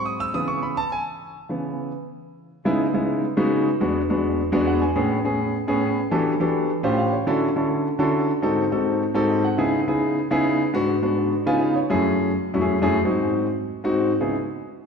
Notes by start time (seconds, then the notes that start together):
Already playing: G#2 F#3 C4
0.05 D#6
0.20 E6
0.34 C#3 E3 B3 D#6
0.48 C#6
0.63 B5
0.77 A5
0.92 G#5
1.49 C#3 E3 B3
2.65 C#3 G#3 B3 D#4 E4
2.94 C#3 G#3 B3 D#4 E4
3.37 C#3 G#3 B3 D#4 F#4
3.81 E2 G#3 B3 D4 F#4
4.10 E2 G#3 B3 D4 F#4
4.52 E2 G#3 B3 D4 F#4 D5
4.67 F#5
4.82 G#5
4.96 A2 B3 C#4 G#4
5.25 A2 B3 C#4 G#4
5.68 A2 B3 C#4 G#4
6.11 E3 B3 D4 F#4 G4 A4
6.40 E3 B3 D4 F#4 G4 A4
6.83 A2 C#4 F4 G4 C5
6.98 F5
7.12 C#5
7.27 D3 C#4 E4 F#4 A4
7.56 D3 C#4 E4 F#4 A4
7.99 D3 C#4 E4 F#4 A4
8.42 G#2 C4 D#4 F#4 A4
8.72 G#2 C4 D#4 F#4 A4
9.15 G#2 C4 D#4 F#4 A4
9.29 D#5
9.44 F#5
9.58 C#3 B3 D#4 E4 G#4
9.87 C#3 B3 D#4 E4 G#4
10.31 C#3 B3 D#4 E4 G#4
10.74 G#2 B3 D4 F#4
11.02 G#2 B3 D4 F#4
11.46 C#3 B3 D#4 F4 G#5
11.61 F5
11.75 C#5
11.90 F#2 A3 C#4 E4 G#4
12.54 F#2 A3 C#4 E4 F#4
12.61 F#2 A3 C#4 E4 G#4
12.82 F#2 A3 C#4 E4 G#4
13.05 G#2 C4 D#4 F#4
13.84 G#2 C4 D#4 F#4
14.21 C#3 B3 D#4 E4 G#4